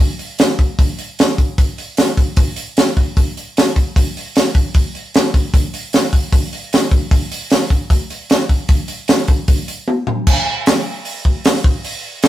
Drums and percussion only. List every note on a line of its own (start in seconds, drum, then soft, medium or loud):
0.19 open hi-hat soft
0.39 snare loud
0.39 open hi-hat medium
0.59 kick medium
0.59 open hi-hat soft
0.79 kick medium
0.79 open hi-hat medium
0.98 open hi-hat soft
1.19 snare loud
1.19 open hi-hat medium
1.38 kick medium
1.38 open hi-hat soft
1.58 kick medium
1.58 open hi-hat medium
1.78 open hi-hat soft
1.97 snare medium
1.97 open hi-hat medium
2.17 kick medium
2.17 open hi-hat soft
2.37 kick loud
2.37 open hi-hat medium
2.56 open hi-hat soft
2.77 snare loud
2.77 open hi-hat medium
2.97 kick medium
2.97 open hi-hat soft
3.17 kick medium
3.17 open hi-hat medium
3.37 open hi-hat soft
3.57 snare medium
3.57 open hi-hat medium
3.76 kick medium
3.76 open hi-hat soft
3.96 kick medium
3.96 open hi-hat medium
4.17 open hi-hat soft
4.36 snare medium
4.36 open hi-hat medium
4.55 kick medium
4.55 open hi-hat soft
4.74 kick medium
4.74 open hi-hat medium
4.95 open hi-hat soft
5.14 snare loud
5.14 open hi-hat medium
5.34 kick medium
5.34 open hi-hat soft
5.54 kick loud
5.54 open hi-hat medium
5.74 open hi-hat soft
5.93 snare medium
5.93 open hi-hat medium
6.13 kick medium
6.13 open hi-hat soft
6.33 kick medium
6.33 open hi-hat medium
6.53 open hi-hat soft
6.73 snare medium
6.73 open hi-hat medium
6.91 kick medium
6.91 open hi-hat soft
7.11 kick medium
7.11 open hi-hat medium
7.31 open hi-hat soft
7.50 snare medium
7.50 open hi-hat medium
7.70 kick medium
7.70 open hi-hat soft
7.90 kick medium
7.90 open hi-hat medium
8.10 open hi-hat soft
8.30 snare medium
8.30 open hi-hat medium
8.49 kick medium
8.49 open hi-hat soft
8.69 kick loud
8.69 open hi-hat medium
8.88 open hi-hat soft
9.08 snare loud
9.08 open hi-hat medium
9.28 kick medium
9.28 open hi-hat soft
9.48 kick medium
9.48 open hi-hat medium
9.68 open hi-hat soft
9.88 high tom medium
10.07 floor tom medium
10.27 kick loud
10.27 crash loud
10.66 snare loud
10.66 open hi-hat medium
11.05 open hi-hat soft
11.25 kick medium
11.44 snare loud
11.44 open hi-hat medium
11.64 kick medium
11.84 open hi-hat medium
12.22 snare loud
12.22 open hi-hat medium